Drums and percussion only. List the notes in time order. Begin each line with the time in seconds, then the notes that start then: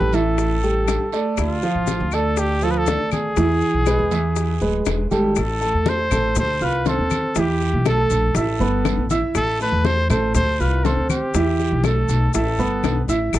0.13 high bongo, high conga, short guiro, maracas
0.38 high bongo, high conga, long guiro, maracas
0.63 high conga, maracas
0.88 high bongo, low bongo, high conga, short guiro, claves, maracas
1.12 high bongo, short guiro, maracas
1.37 high bongo, high conga, long guiro, claves, maracas
1.62 high conga, maracas
1.87 high bongo, high conga, short guiro, maracas
2.11 high conga, short guiro, claves, maracas
2.37 high bongo, high conga, long guiro, maracas
2.61 high conga, maracas
2.86 high bongo, low bongo, high conga, short guiro, maracas
3.11 high conga, short guiro, claves, maracas
3.36 high bongo, high conga, long guiro, maracas
3.61 high bongo, high conga, maracas
3.86 high bongo, high conga, short guiro, claves, maracas
4.11 high bongo, high conga, short guiro, maracas
4.36 high bongo, high conga, long guiro, maracas
4.61 high conga, maracas
4.86 high bongo, low bongo, high conga, short guiro, claves, maracas
5.11 high bongo, high conga, short guiro, maracas
5.36 high bongo, high conga, long guiro, claves, maracas
5.61 high bongo, high conga, maracas
5.86 high bongo, high conga, short guiro, maracas
6.11 high bongo, high conga, low conga, short guiro, claves, maracas
6.35 high bongo, high conga, low conga, long guiro, maracas
6.61 high conga, maracas
6.86 high bongo, low bongo, high conga, short guiro, maracas
7.10 high bongo, high conga, short guiro, claves, maracas
7.35 high bongo, high conga, long guiro, maracas
7.61 high bongo, high conga, maracas
7.85 high bongo, high conga, short guiro, claves, maracas
8.10 high bongo, short guiro, maracas
8.35 high bongo, high conga, long guiro, maracas
8.60 high conga, maracas
8.85 high bongo, low bongo, high conga, short guiro, claves, maracas
9.10 high bongo, high conga, short guiro, maracas
9.35 high bongo, high conga, long guiro, claves, maracas
9.59 high bongo, high conga, maracas
9.85 high bongo, high conga, short guiro, maracas
10.10 high bongo, high conga, low conga, short guiro, claves, maracas
10.35 high bongo, high conga, low conga, long guiro, maracas
10.60 high conga, maracas
10.85 high bongo, low bongo, high conga, short guiro, maracas
11.10 high bongo, high conga, short guiro, claves, maracas
11.34 high bongo, high conga, long guiro, maracas
11.59 high bongo, high conga, maracas
11.84 high bongo, high conga, short guiro, claves, maracas
12.09 high bongo, high conga, short guiro, maracas
12.34 high bongo, high conga, long guiro, maracas
12.59 high conga, maracas
12.84 high bongo, low bongo, high conga, short guiro, claves, maracas
13.09 high bongo, short guiro, maracas
13.33 high bongo, high conga, long guiro, claves, maracas